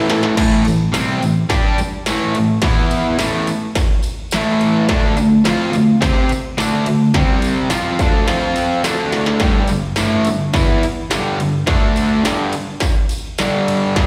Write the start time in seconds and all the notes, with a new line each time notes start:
Already playing: A2 E3 A3
0.10 snare, ride
0.23 snare
0.35 A2 E3 A3, kick, snare, crash, ride, tambourine
0.65 A2 E3, ride, tambourine
0.92 C3 G3 C4, snare, ride, tambourine
1.20 A2 E3, ride, tambourine
1.49 G3 D4 G4, kick, snare, ride, tambourine
1.78 muted overdriven electric guitar stroke, ride, tambourine
2.06 A2 E3 A3, snare, ride, tambourine
2.35 A2 E3, ride, tambourine
2.62 E3 B3 E4, kick, snare, ride, tambourine
2.90 ride, tambourine
3.19 A2 E3 A3, snare, ride, tambourine
3.47 ride, tambourine
3.75 kick, snare, ride, tambourine
4.02 ride, tambourine
4.31 A2 E3, snare, ride, tambourine
4.36 A3
4.59 ride, tambourine
4.88 D3 A3 D4, kick, snare, ride, tambourine
5.17 D3 A3, ride, tambourine
5.45 F3 C4 F4, snare, ride, tambourine
5.72 D3 A3, ride, tambourine
6.01 C4 G4 C5, kick, snare, ride, tambourine
6.29 muted overdriven electric guitar stroke, ride, tambourine
6.58 D3 A3 D4, snare, ride, tambourine
6.86 D3 A3, ride
7.14 C3 G3 C4, kick, snare, ride
7.42 ride, tambourine
7.70 F3 C4 F4, snare, ride, tambourine
7.99 D3 A3 D4, kick, ride, tambourine
8.27 F3 C4 F4, snare, ride, tambourine
8.56 ride, tambourine
8.84 D3 A3 D4, snare, ride, tambourine
9.12 snare, ride, tambourine
9.26 snare
9.40 G2 D3 G3, kick, snare, ride, tambourine
9.68 G2 D3, ride, tambourine
9.96 A2 E3, snare, ride, tambourine
10.00 A3
10.25 G2 D3, ride, tambourine
10.54 E3 B3 E4, kick, snare, ride, tambourine
10.83 muted overdriven electric guitar stroke, ride, tambourine
11.10 G2 D3 G3, snare, ride, tambourine
11.38 G2 D3, ride, tambourine
11.66 D3 A3 D4, kick, snare, ride, tambourine
11.96 ride, tambourine
12.24 G2 D3 G3, snare, ride, tambourine
12.53 ride, tambourine
12.80 kick, snare, ride, tambourine
13.09 ride, tambourine
13.38 G2 D3 G3, snare, ride, tambourine
13.68 ride, tambourine
13.96 G2 D3 G3, kick, snare, ride, tambourine